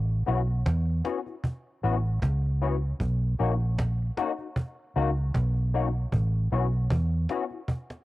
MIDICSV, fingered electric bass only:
0, 0, Header, 1, 2, 480
1, 0, Start_track
1, 0, Tempo, 781250
1, 1842, Time_signature, 4, 2, 24, 8
1, 4940, End_track
2, 0, Start_track
2, 0, Title_t, "Fingered electric bass"
2, 0, Program_c, 0, 33
2, 0, Note_on_c, 0, 33, 94
2, 139, Note_off_c, 0, 33, 0
2, 172, Note_on_c, 0, 35, 84
2, 382, Note_off_c, 0, 35, 0
2, 406, Note_on_c, 0, 40, 88
2, 619, Note_off_c, 0, 40, 0
2, 1130, Note_on_c, 0, 33, 72
2, 1341, Note_off_c, 0, 33, 0
2, 1367, Note_on_c, 0, 37, 89
2, 1794, Note_off_c, 0, 37, 0
2, 1846, Note_on_c, 0, 35, 88
2, 2059, Note_off_c, 0, 35, 0
2, 2089, Note_on_c, 0, 34, 86
2, 2515, Note_off_c, 0, 34, 0
2, 3048, Note_on_c, 0, 37, 71
2, 3260, Note_off_c, 0, 37, 0
2, 3288, Note_on_c, 0, 35, 91
2, 3714, Note_off_c, 0, 35, 0
2, 3766, Note_on_c, 0, 33, 88
2, 3978, Note_off_c, 0, 33, 0
2, 4007, Note_on_c, 0, 35, 86
2, 4219, Note_off_c, 0, 35, 0
2, 4246, Note_on_c, 0, 40, 86
2, 4458, Note_off_c, 0, 40, 0
2, 4940, End_track
0, 0, End_of_file